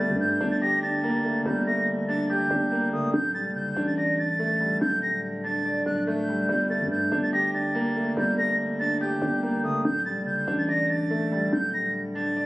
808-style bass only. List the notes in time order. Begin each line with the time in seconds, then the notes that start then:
Already playing: G1
0.09 G2
0.41 G1
1.46 G1
2.51 G1
2.93 F#1
3.03 G1
3.14 D1
3.45 F#1
3.76 A1
4.81 D1
5.86 D1
6.49 G1
6.81 G2
7.12 G1
8.17 G1
9.22 G1
9.64 F#1
9.74 G1
9.85 D1
10.16 F#1
10.48 A1
11.53 D1